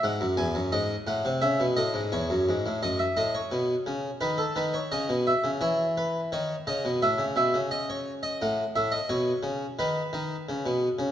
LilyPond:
<<
  \new Staff \with { instrumentName = "Harpsichord" } { \time 4/4 \key fis \minor \tempo 4 = 86 fis''8 gis''8 dis''8 fis''8 e''8 dis''8 cis''4 | dis''16 e''16 dis''16 cis''4~ cis''16 b'16 a'16 b'16 cis''16 dis''8 e''8 | cis''8 b'8 cis''8 dis''8 e''8 e''8 dis''16 cis''8 dis''16 | fis''8 e''16 dis''16 cis''4 b'2 | }
  \new Staff \with { instrumentName = "Harpsichord" } { \clef bass \time 4/4 \key fis \minor gis,16 fis,16 e,16 fis,16 gis,8 a,16 bis,16 cis16 b,16 a,16 gis,16 e,16 fis,16 gis,16 a,16 | fis,8 a,8 b,8 cis8 dis8 dis8 cis16 b,8 cis16 | e4 dis8 cis16 b,16 a,16 cis16 b,16 cis4~ cis16 | a,8 a,8 b,8 cis8 dis8 dis8 cis16 b,8 cis16 | }
>>